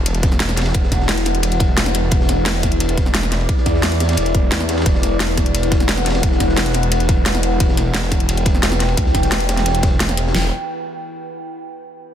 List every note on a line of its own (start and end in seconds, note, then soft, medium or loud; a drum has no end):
0.00 0.73 E1 loud
0.00 10.31 E4 medium
0.00 10.31 B4 medium
0.00 2.11 F#5 medium
0.06 closed hi-hat medium
0.06 ride medium
0.15 closed hi-hat soft
0.23 kick loud
0.23 snare soft
0.23 closed hi-hat medium
0.23 ride medium
0.32 snare soft
0.40 snare loud
0.40 closed hi-hat medium
0.40 ride medium
0.49 snare soft
0.56 snare medium
0.56 snare soft
0.56 closed hi-hat medium
0.56 ride medium
0.61 snare medium
0.61 ride medium
0.65 snare loud
0.65 ride medium
0.74 2.10 E1 medium
0.74 kick loud
0.74 closed hi-hat medium
0.74 ride medium
0.83 snare medium
0.92 kick medium
0.92 snare soft
0.92 closed hi-hat medium
0.92 ride medium
1.00 snare soft
1.09 snare loud
1.09 closed hi-hat medium
1.09 ride medium
1.17 snare soft
1.17 closed hi-hat soft
1.25 snare soft
1.25 closed hi-hat medium
1.25 ride medium
1.35 closed hi-hat soft
1.43 closed hi-hat medium
1.43 ride medium
1.52 closed hi-hat soft
1.60 kick loud
1.60 closed hi-hat medium
1.60 ride medium
1.77 snare loud
1.77 closed hi-hat medium
1.77 ride medium
1.86 snare medium
1.95 closed hi-hat medium
1.95 ride medium
2.11 3.48 E1 medium
2.11 4.85 D5 medium
2.11 kick loud
2.11 closed hi-hat medium
2.11 ride medium
2.21 snare medium
2.29 snare soft
2.29 closed hi-hat medium
2.29 ride medium
2.46 snare loud
2.46 closed hi-hat medium
2.46 ride loud
2.54 ride soft
2.63 kick medium
2.63 snare soft
2.63 closed hi-hat medium
2.63 ride medium
2.72 closed hi-hat soft
2.80 closed hi-hat medium
2.80 ride medium
2.89 closed hi-hat soft
2.97 kick loud
2.97 snare soft
2.97 closed hi-hat medium
2.97 ride medium
3.06 snare soft
3.14 snare loud
3.14 closed hi-hat medium
3.14 ride medium
3.23 snare soft
3.32 snare soft
3.32 closed hi-hat medium
3.32 ride medium
3.41 ride soft
3.49 kick loud
3.49 closed hi-hat medium
3.49 ride medium
3.57 snare soft
3.66 4.16 E2 medium
3.66 kick medium
3.66 snare soft
3.66 closed hi-hat medium
3.66 ride medium
3.74 snare soft
3.83 snare loud
3.83 closed hi-hat medium
3.83 ride loud
3.91 snare soft
3.91 closed hi-hat soft
4.00 snare loud
4.00 snare soft
4.00 closed hi-hat medium
4.00 ride medium
4.09 snare medium
4.09 closed hi-hat soft
4.09 ride medium
4.13 snare medium
4.13 ride medium
4.17 4.50 E1 medium
4.17 closed hi-hat medium
4.17 ride medium
4.26 closed hi-hat soft
4.35 kick loud
4.35 closed hi-hat medium
4.51 4.85 E2 loud
4.51 snare loud
4.51 closed hi-hat medium
4.51 ride medium
4.60 snare soft
4.69 snare loud
4.69 closed hi-hat medium
4.69 ride medium
4.77 snare medium
4.77 ride medium
4.82 snare medium
4.82 ride medium
4.86 6.22 E1 loud
4.86 7.59 F#5 medium
4.86 kick loud
4.86 closed hi-hat medium
4.86 ride medium
4.95 snare medium
5.03 snare soft
5.03 closed hi-hat medium
5.03 ride medium
5.20 snare loud
5.20 closed hi-hat medium
5.20 ride loud
5.29 ride soft
5.37 kick medium
5.37 snare soft
5.37 closed hi-hat medium
5.37 ride medium
5.46 closed hi-hat soft
5.55 closed hi-hat medium
5.55 ride medium
5.63 closed hi-hat soft
5.72 kick loud
5.72 snare soft
5.72 closed hi-hat medium
5.72 ride medium
5.80 snare soft
5.89 snare loud
5.89 closed hi-hat medium
5.89 ride loud
5.97 snare soft
6.06 snare soft
6.06 snare medium
6.06 closed hi-hat medium
6.06 ride medium
6.10 snare medium
6.10 ride medium
6.14 snare loud
6.14 ride medium
6.23 7.59 E1 medium
6.23 kick loud
6.23 closed hi-hat medium
6.23 ride medium
6.32 snare medium
6.40 kick medium
6.40 snare soft
6.40 closed hi-hat medium
6.40 ride medium
6.49 snare soft
6.57 snare loud
6.57 closed hi-hat medium
6.57 ride medium
6.66 snare soft
6.66 closed hi-hat soft
6.74 snare soft
6.74 closed hi-hat medium
6.74 ride medium
6.83 closed hi-hat soft
6.92 closed hi-hat medium
6.92 ride medium
7.00 closed hi-hat soft
7.09 kick loud
7.09 closed hi-hat medium
7.09 ride medium
7.26 snare loud
7.26 closed hi-hat medium
7.26 ride medium
7.35 snare soft
7.43 closed hi-hat medium
7.43 ride medium
7.60 8.96 E1 loud
7.60 10.33 G5 loud
7.60 kick loud
7.60 closed hi-hat medium
7.60 ride medium
7.69 snare medium
7.77 snare soft
7.77 closed hi-hat medium
7.77 ride medium
7.94 snare loud
7.94 closed hi-hat loud
7.94 ride medium
8.03 ride soft
8.11 kick medium
8.11 snare soft
8.11 closed hi-hat medium
8.11 ride medium
8.20 closed hi-hat soft
8.29 closed hi-hat medium
8.29 ride medium
8.37 closed hi-hat soft
8.45 kick loud
8.45 snare soft
8.45 closed hi-hat medium
8.45 ride medium
8.55 snare soft
8.63 snare loud
8.63 closed hi-hat loud
8.63 ride medium
8.72 snare soft
8.80 snare soft
8.80 closed hi-hat medium
8.80 ride medium
8.88 ride soft
8.97 9.13 D2 medium
8.97 kick loud
8.97 closed hi-hat loud
8.97 ride medium
9.06 snare soft
9.14 10.33 E1 loud
9.14 kick medium
9.14 snare soft
9.14 closed hi-hat medium
9.14 ride medium
9.23 snare soft
9.23 closed hi-hat soft
9.31 snare loud
9.31 closed hi-hat loud
9.31 ride medium
9.40 snare soft
9.40 closed hi-hat soft
9.49 snare loud
9.49 snare soft
9.49 closed hi-hat medium
9.49 ride medium
9.57 snare soft
9.57 closed hi-hat soft
9.57 ride soft
9.66 snare loud
9.66 closed hi-hat loud
9.66 ride medium
9.75 closed hi-hat soft
9.83 kick loud
9.83 snare loud
9.83 closed hi-hat medium
9.83 ride medium
10.00 snare loud
10.00 closed hi-hat loud
10.00 ride medium
10.09 snare soft
10.17 closed hi-hat medium
10.17 ride medium
10.27 snare medium
10.35 10.51 E1 loud
10.35 snare loud